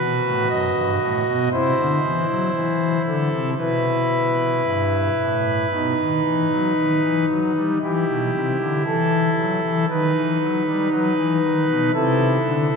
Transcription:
Already playing: F#4 B4
0.00 B2
0.24 A2
0.49 F#2 D#5
0.76 G2
1.01 A2
1.26 B2
1.52 C3 E4 C5
1.77 D3
2.03 E3
2.29 F#3
2.54 E3
3.06 D3 A4
3.32 C3
3.58 B2 E4 B4
4.64 G2
5.18 A2
5.71 B2 D#4
5.98 D#3
6.24 E3
6.51 F#3
6.77 D#3
7.02 E3
7.30 F#3
7.55 G3
7.82 E3 E4 G4
8.08 B2
8.34 C3
8.59 D3
8.86 E3 A4
9.38 F#3
9.64 E3
9.90 D#3 D#4 B4
10.16 E3
10.41 F#3
10.66 G3
10.92 F#3 B4
11.17 E3
11.43 D#3
11.68 B2
11.94 C3 E4 A4
12.46 D3
12.72 E3

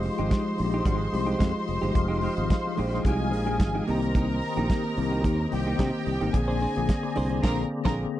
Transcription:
Already playing: F3 G#3 D#4 F4 G4 C5 D#5 C6
0.03 muted clean electric guitar stroke, open hi-hat
0.17 G#1 F3 G#3 D#4 G4, closed hi-hat
0.30 G#3 D#4 G4, kick, snare, closed hi-hat
0.45 muted clean electric guitar stroke
0.56 A#1 F3 G#3 D#4 F4, muted clean electric guitar stroke, open hi-hat
0.65 G4
0.72 G#3 D#4 G4, closed hi-hat
0.85 G#1 G#3 D#4 G4, kick, closed hi-hat
1.00 muted clean electric guitar stroke
1.11 C2 F3 G#3 D#4 G4, muted clean electric guitar stroke, open hi-hat
1.26 G#3 D#4 G4, closed hi-hat
1.39 F2 G#3 D#4 G4, kick, snare, closed hi-hat
1.54 muted clean electric guitar stroke
1.67 F1, muted clean electric guitar stroke, open hi-hat
1.81 G1 F3 G#3 D#4 G4, closed hi-hat
1.93 F1 F3 G#3 D#4 G4 F5, kick, closed hi-hat
2.08 G#3 D#4 G4
2.21 G#3 D#4 G4, open hi-hat
2.35 G#1 F3 G#3 D#4 G4, muted clean electric guitar stroke, closed hi-hat
2.50 muted clean electric guitar stroke, kick, snare, closed hi-hat
2.66 muted clean electric guitar stroke
2.75 A#1 F3 G#3 D#4 G4, open hi-hat
2.91 G#3 D#4 G4, snare, closed hi-hat
3.05 C2 G#3 D#4 G4 G#4 G#5, kick, closed hi-hat
3.20 muted clean electric guitar stroke
3.31 A#1 F3 G#3 D#4 G#4, muted clean electric guitar stroke, open hi-hat
3.47 G#3 D#4 G4, closed hi-hat
3.59 G#1, muted clean electric guitar stroke, kick, snare, closed hi-hat
3.75 G#3 D#4 G4
3.86 C2 D#3 A#3 C4 D#4 G4 A#4 C5 A#5, open hi-hat
4.02 muted clean electric guitar stroke, closed hi-hat
4.15 A#3 D#4 G4, kick, closed hi-hat
4.31 muted clean electric guitar stroke
4.41 muted clean electric guitar stroke, open hi-hat
4.55 A#1 D#3 A#3 C4 D#4 G4, closed hi-hat
4.59 A#3
4.70 A#3 D#4 G4, kick, snare, closed hi-hat
4.85 muted clean electric guitar stroke
4.97 C2 D#3 A#3 C4 G4, muted clean electric guitar stroke, open hi-hat
5.10 A#3 D#4 G4, closed hi-hat
5.24 D#2 A#3 D#4 G4, kick, closed hi-hat
5.40 muted clean electric guitar stroke
5.51 C2 D#3 A#3 C4 G4 G5, muted clean electric guitar stroke, open hi-hat
5.66 A#3 D#4 G4, closed hi-hat
5.79 C3 A#3 D#4 G4, kick, snare, closed hi-hat
5.92 muted clean electric guitar stroke
6.06 C2, muted clean electric guitar stroke, open hi-hat
6.21 G#1 D#3 A#3 C4 D#4 G4, closed hi-hat
6.33 A#1 D3 A#3 C4 G#4 D5 G#5, muted clean electric guitar stroke, kick, closed hi-hat
6.48 D4 G#4 C5
6.60 D4 G#4 C5, open hi-hat
6.75 A#1 D3 A#3 C4 G#4, muted clean electric guitar stroke, closed hi-hat
6.89 muted clean electric guitar stroke, kick, snare, closed hi-hat
7.03 muted clean electric guitar stroke
7.15 C2 D3 A#3 C4 D4 G#4 C5, open hi-hat
7.30 D4 G#4 C5, closed hi-hat
7.42 A#1 D3 A#3 C4 D4 G#4 A#4 C5 A#5, kick, snare, crash
7.84 A#1 D3 A#3 C4 D4 G#4 A#4 C5 A#5, kick, snare

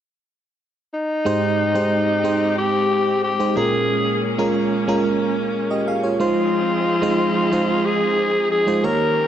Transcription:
0.94 D#4
1.25 G#2 G#3 C4 D#4 G4 C5
1.74 G#3 D#4 G4 C5
2.24 G#3 D#4 G4 C5
2.58 G4
3.23 G4
3.39 G#3 D#4 G4 C5
3.56 A#2 G#3 A#3 C#4 F4 G#4 A#4
4.38 G#3 C#4 F4 A#4
4.87 G#3 C#4 F4 A#4
5.70 G4 D#5
5.87 G#4 F5
6.03 F4 C#5
6.19 F3 G#3 C4 D#4 F4 G#4 C5
7.02 G#3 D#4 F4 C5
7.52 G#3 D#4 F4 C5
7.85 G#4
8.51 G#4
8.66 G#3 D#4 F4 C5
8.83 D#3 A#3 C#4 D#4 G4 A#4 C#5

